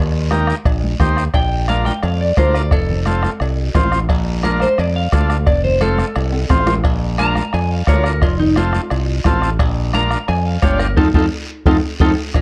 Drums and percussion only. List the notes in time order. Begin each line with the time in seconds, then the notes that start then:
0.31 bombo rim, high conga, short guiro
0.47 bombo rim, short guiro
0.65 bombo low, bombo rim, cowbell, long guiro
0.83 high conga
1.00 bombo low, bombo rim, high conga, low conga, short guiro
1.17 bombo rim, short guiro
1.34 bombo low, bombo rim, cowbell, long guiro
1.68 bombo rim, cowbell, high conga, short guiro
1.85 bombo rim, high conga, short guiro
2.03 bombo rim, cowbell, long guiro
2.37 bombo low, bombo rim, cowbell, high conga, low timbale, short guiro
2.54 bombo rim, short guiro
2.71 bombo low, bombo rim, cowbell, long guiro
2.90 low conga
3.06 bombo rim, cowbell, high conga, short guiro
3.23 bombo rim, high conga, short guiro
3.40 bombo rim, cowbell, long guiro
3.75 bombo low, bombo rim, cowbell, high conga, low conga, low timbale, short guiro
3.92 bombo rim, short guiro
4.09 bombo low, bombo rim, cowbell, long guiro
4.43 bombo rim, cowbell, high conga, short guiro
4.60 bombo rim, high conga, short guiro
4.78 bombo rim, cowbell, long guiro
5.12 bombo low, bombo rim, cowbell, high conga, short guiro
5.30 bombo rim, short guiro
5.47 bombo low, bombo rim, cowbell, long guiro
5.65 low conga
5.81 bombo rim, cowbell, high conga, short guiro
5.98 bombo rim, high conga, short guiro
6.16 bombo rim, cowbell, long guiro
6.32 high timbale
6.49 bombo low, bombo rim, cowbell, high conga, low conga, high timbale, short guiro
6.67 bombo rim, low timbale, short guiro
6.84 bombo low, bombo rim, cowbell, long guiro
7.18 bombo rim, cowbell, high conga, short guiro
7.35 bombo rim, high conga, short guiro
7.53 bombo rim, cowbell, long guiro
7.87 bombo low, bombo rim, cowbell, high conga, low timbale, short guiro
8.04 bombo rim, short guiro
8.22 bombo low, bombo rim, cowbell, long guiro
8.40 low conga
8.56 bombo rim, cowbell, high conga, short guiro
8.73 bombo rim, high conga, short guiro
8.90 bombo rim, cowbell, long guiro
9.24 bombo low, bombo rim, cowbell, high conga, low conga, low timbale, short guiro
9.42 bombo rim, short guiro
9.59 bombo low, bombo rim, cowbell, long guiro
9.93 bombo rim, cowbell, high conga, short guiro
10.11 bombo rim, short guiro
10.28 bombo rim, cowbell, long guiro
10.62 bombo low, bombo rim, cowbell, high conga, short guiro
10.79 bombo rim, short guiro
10.97 bombo low, high conga, high timbale, long guiro
11.14 bombo low, high conga, high timbale, long guiro
11.66 bombo low, high conga, high timbale, long guiro
12.00 bombo low, high conga, high timbale, long guiro
12.34 bombo low, bombo rim, cowbell, long guiro